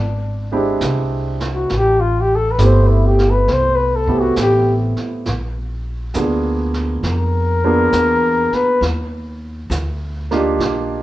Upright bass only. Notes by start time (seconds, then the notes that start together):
Already playing: G#1
0.81 C2
1.70 A1
2.58 G1
3.48 C2
4.36 A1
4.97 muted upright bass stroke
5.26 A#1
6.16 D2
7.03 F2
7.93 E2
8.52 muted upright bass stroke
8.81 D#2
9.70 D2
10.59 A#1